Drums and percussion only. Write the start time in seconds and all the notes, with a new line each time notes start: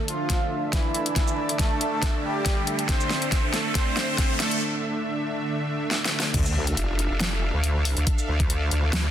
0.08 closed hi-hat
0.30 kick, snare, closed hi-hat
0.73 kick, snare, closed hi-hat
0.94 closed hi-hat
1.06 closed hi-hat
1.16 kick, snare, closed hi-hat
1.28 shaker
1.49 closed hi-hat
1.59 kick, snare, closed hi-hat
1.81 closed hi-hat
2.02 kick, snare, closed hi-hat
2.46 kick, snare, closed hi-hat
2.67 closed hi-hat
2.79 closed hi-hat
2.89 kick, snare, closed hi-hat
3.00 shaker
3.10 snare
3.22 closed hi-hat
3.32 kick, snare, closed hi-hat
3.54 snare, closed hi-hat
3.75 kick, snare, closed hi-hat
3.97 snare
4.18 kick, snare, closed hi-hat
4.40 snare, closed hi-hat
4.51 closed hi-hat
5.91 snare
6.05 snare
6.20 snare
6.34 kick, closed hi-hat, crash
6.46 shaker
6.67 closed hi-hat
6.77 closed hi-hat
6.99 closed hi-hat
7.20 snare, closed hi-hat
7.64 closed hi-hat
7.85 open hi-hat
7.97 closed hi-hat
8.07 kick, closed hi-hat
8.18 shaker
8.40 kick, closed hi-hat
8.50 closed hi-hat
8.71 closed hi-hat
8.93 snare, closed hi-hat